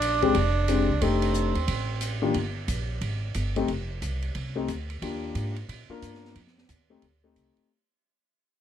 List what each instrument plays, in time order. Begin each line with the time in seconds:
Already playing: upright bass A#1, tenor saxophone D4, trumpet D5
0.02 hi-hat pedal, ride
0.22 grand piano G#3 C4 D4 G4, kick, ride
0.35 upright bass F1, kick, ride
0.68 grand piano G#3 C4 D4 G4, hi-hat pedal, ride
0.89 upright bass C2
1.02 upright bass F1, grand piano A3 D4 D#4 G4, tenor saxophone C4, kick, ride
1.22 ride
1.34 hi-hat pedal
1.55 upright bass D#2, ride
1.68 upright bass A1, kick, ride
2.01 hi-hat pedal, ride
2.22 grand piano D#3 A#3 D4 F4 G4
2.34 upright bass G1, kick, ride
2.68 upright bass A#1, kick, hi-hat pedal, ride
3.01 upright bass G#1, kick, ride
3.34 upright bass G1, kick, hi-hat pedal, ride
3.56 grand piano A3 C4 D#4 G4, ride
3.68 upright bass F1, kick, ride
4.02 upright bass C2, kick, hi-hat pedal, ride
4.22 ride
4.35 upright bass C2, kick, ride
4.56 grand piano A3 C4 D#4 G4
4.68 upright bass D2, kick, hi-hat pedal, ride
4.90 ride
5.02 upright bass D#2, grand piano A#3 D4 F4 G4, kick, ride
5.35 upright bass G#2, kick, hi-hat pedal, ride
5.56 ride
5.69 upright bass A#2, kick, ride
5.89 grand piano A#3 D4 F4 A#4, muted upright bass stroke
6.02 upright bass G2, kick, hi-hat pedal, ride
6.14 snare
6.25 snare
6.35 upright bass F2, kick, ride
6.47 snare
6.58 snare
6.69 upright bass D#2, kick, hi-hat pedal, ride
6.90 grand piano A3 C4 D#4 G4
7.02 upright bass D2, kick, ride
7.24 grand piano A3 C4 D#4 G4
7.36 upright bass C2, kick, hi-hat pedal, ride
7.56 muted upright bass stroke, ride